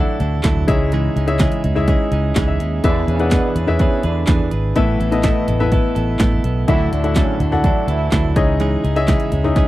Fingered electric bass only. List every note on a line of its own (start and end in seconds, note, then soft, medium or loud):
0.20 0.40 D2 loud
0.45 0.64 D2 loud
0.68 1.08 C#2 loud
1.16 1.46 C#2 medium
1.65 1.94 C#2 medium
2.12 2.32 C#2 medium
2.36 2.56 C#2 loud
2.60 2.80 D#2 medium
2.84 3.04 E2 loud
3.08 3.37 E2 loud
3.56 3.85 E2 medium
4.04 4.24 E2 loud
4.28 4.48 E2 loud
4.52 4.72 G#1 medium
4.76 4.96 A1 loud
5.00 5.29 A1 loud
5.48 5.78 A1 loud
5.96 6.16 A1 loud
6.20 6.40 A1 loud
6.44 6.64 B1 loud
6.68 6.88 D2 loud
6.92 7.22 D2 medium
7.40 7.70 D2 medium
7.88 8.07 D2 loud
8.12 8.32 D2 loud
8.36 8.75 C#2 loud
8.84 9.14 C#2 medium
9.32 9.62 C#2 medium